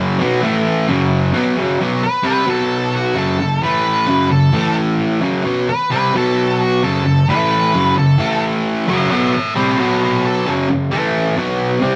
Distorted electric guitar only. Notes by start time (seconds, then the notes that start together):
Already playing: F#2 C#3 F#3
0.19 B2 F#3 B3
0.42 A2 E3 A3
0.88 F#2 C#3 F#3
1.33 B2 F#3 B3
1.56 F#2 C#3 F#3
1.79 B2 F#3 B3
2.02 muted distorted electric guitar stroke
2.23 C3 G3 C4
2.45 B2 F#3 B3
3.15 F#2 C#3 F#3
3.39 F#2 C#3
3.61 A2 E3 A3
4.06 F#2 C#3 F#3
4.29 F#2 C#3
4.52 A2 E3 A3
5.20 F#2 C#3 F#3
5.44 B2 F#3 B3
5.68 muted distorted electric guitar stroke
5.90 C3 G3 C4
6.13 B2 F#3 B3
6.83 F#2 C#3 F#3
7.04 F#2 C#3
7.29 A2 E3 A3
7.73 F#2 C#3 F#3
7.97 F#2 C#3
8.18 A2 E3 A3
8.87 F#2 C#3 F#3
9.11 B2 F#3 B3
9.33 muted distorted electric guitar stroke
9.55 C3 G3 C4
9.78 B2 F#3 B3
10.46 F#2 C#3 F#3
10.69 F#2 C#3
10.90 A2 E3 A3
11.36 B2 F#3 B3
11.80 C3 G3 C4